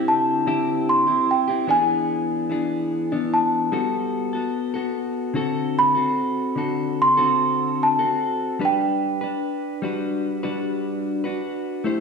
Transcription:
Already playing: D3 C4 E4 G4 G5
0.08 A5
0.47 D3 C4 E4 G4
0.89 C6
1.07 C4 E4 G4
1.31 G5
1.48 C4 E4 G4
1.67 E3 B3 D4 G#4 G#5
2.49 E3 B3 D4 G#4
3.12 E3 B3 D4
3.34 A5
3.72 G3 B3 F#4 A4
4.33 B3 F#4 A4
4.74 B3 F#4 A4
5.34 D3 C4 F#4 A4
5.79 B5
5.95 C4 F#4 A4
6.55 D3 C4 F#4 A4
7.02 C6
7.17 D3 C4 F#4 A4
7.83 A5
7.99 C4 F#4 A4
8.59 G3 D4 B4
8.65 G5
9.21 D4 B4
9.82 G3 D4 F#4 B4
10.43 G3 D4 F#4 B4
11.24 D4 F#4 B4
11.84 A3 E4 G4 C5

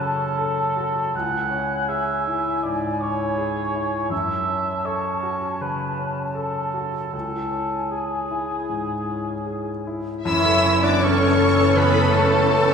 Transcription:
Already playing: F#2 C#3 C#4 F#4 A4 A5
0.00 C#4 A4
0.38 A4
0.77 F#4
1.15 C#2 E4 F#5 G#5
1.51 C#4
1.89 G#4 E5
2.27 E4
2.63 G#2 D5
3.01 C#4 C#5
3.38 G#4
3.75 E4
4.10 F#2 C#4 E5 A5
4.48 C#4
4.85 A4 C#5
5.23 F#4
5.61 C#3 B4
5.99 C#4
6.35 A4
6.74 F#4
7.12 C#2 E4 A4 G#5
7.51 C#4
7.92 G#4
8.31 E4
8.69 G#2
9.09 C#4
9.46 G#4
9.87 E4
10.23 F#1 F#2 E3 C#4 E4 E5 E6
10.45 A4
10.64 C#4
10.81 B3 D4 D5 D6
11.01 C#4 A4 C#5 C#6
11.19 A4
11.39 C#4
11.58 A4
11.75 C#3 B3 B4 B5
11.94 A4
12.13 A3 C#4 A4 A5
12.32 B3
12.52 C#4
12.71 A4

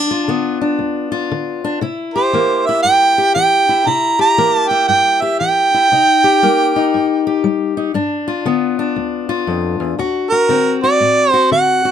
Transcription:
Already playing: G2 D4
0.11 F4
0.28 D3 B3
0.61 D4
0.79 D2
1.12 F4
1.31 D3
1.64 D4
1.81 C3 E4
2.14 G4 C5
2.33 E3 A#3
2.66 E4 E5
2.83 G2 G5
3.18 G4
3.34 E3 G5
3.69 E4
3.86 C3 E4 A#5
4.19 G4 A#5
4.38 E3 A#3
4.56 A5
4.69 E4 G5
4.88 G2 G5
5.21 G4 E5
5.40 E3 G5
5.74 E4
5.92 C3 D#4
6.24 G4
6.43 G3 A#3
6.76 D#4
6.94 G2
7.27 G4
7.44 G3
7.77 D#4
7.94 G2 D4
8.28 F4
8.45 D3 B3
8.79 D4
8.96 D2
9.29 F4
9.47 F2
9.80 E2
9.99 D2 F#4
10.29 F#4 A#4
10.49 D3 C4
10.83 F#4 D5
11.00 A2
11.30 F#4 C5
11.51 D3 F#5
11.85 F#4

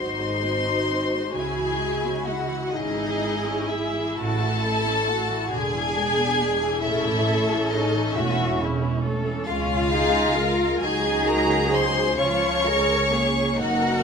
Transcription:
Already playing: G#1 F#3 D#4 F#4 C5 C6
0.19 G#3
0.43 C4
0.67 D#4
0.91 C4
1.13 G#3
1.35 C#2 C#3 E4 G#4 G#5
1.57 E3
1.81 G#3
2.04 C#4
2.24 G#3 F#4 F#5
2.49 E3
2.70 G#1 C#3 D#4 E4 G#4 D#5
2.97 E3
3.22 G#3
3.46 C#4
3.69 G#3 E4 E5
3.95 E3
4.15 A1 F#4 A4 A5
4.19 C#3
4.42 E3
4.64 A3 E4
4.88 C#4
5.07 A3 F#4
5.29 E3
5.48 E1 G#4 G#5
5.53 D3 D4
5.74 E3
5.96 G#3
6.19 B3
6.40 G#3
6.62 E3
6.81 A1 C#3 C#4 E4 A4 E5
7.06 E3
7.28 A3
7.51 E3
7.70 C#3 D#4 D#5
7.96 E3
8.14 E1 A3 E4 F#4 E5
8.39 E3
8.59 C#3 E4
8.82 E3
9.04 A3 A4
9.27 E3
9.46 C#2 C#4 F4 F5
9.50 G#3
9.93 D#4 G#4
10.38 F4 A#4
10.82 C#2 F#3 D#4 G#4 G#5
11.26 A#4 A#5
11.72 C5 C6
12.18 C#2 F3 C#4 F4 C#5 C#6
12.65 G#3 A#4
13.11 A#3 G#4
13.57 F#1 D#4 F#4 A#4 F#5

